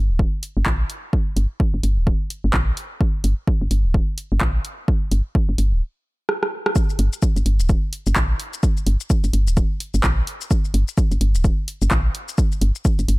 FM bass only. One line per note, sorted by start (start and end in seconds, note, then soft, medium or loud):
0.00 0.11 G1 medium
0.10 0.25 D1 loud
0.57 0.63 G1 loud
0.66 0.84 A#1 medium
1.36 1.46 G1 medium
1.74 1.81 G1 medium
1.83 1.99 G1 medium
1.97 2.13 D1 loud
2.44 2.51 G1 loud
2.54 2.72 A#1 loud
3.24 3.34 G1 medium
3.62 3.68 G1 medium
3.71 3.86 G1 medium
3.85 4.00 D1 loud
4.32 4.39 G1 loud
4.41 4.59 A#1 loud
5.12 5.22 G1 loud
5.49 5.56 G1 medium
5.58 5.74 G1 medium
5.72 5.82 D1 loud
6.99 7.09 G1 loud
7.36 7.43 G1 medium
7.46 7.61 G1 medium
7.60 7.75 D1 loud
8.07 8.14 G1 loud
8.16 8.34 A#1 loud
8.87 8.97 G1 loud
9.24 9.31 G1 medium
9.33 9.49 G1 medium
9.47 9.63 D1 loud
9.94 10.01 G1 loud
10.04 10.22 A#1 loud
10.74 10.84 G1 loud
11.11 11.18 G1 medium
11.21 11.37 G1 medium
11.35 11.50 D1 loud
11.82 11.89 G1 loud
11.91 12.09 A#1 loud
12.61 12.71 G1 loud
12.99 13.06 G1 medium
13.08 13.19 G1 medium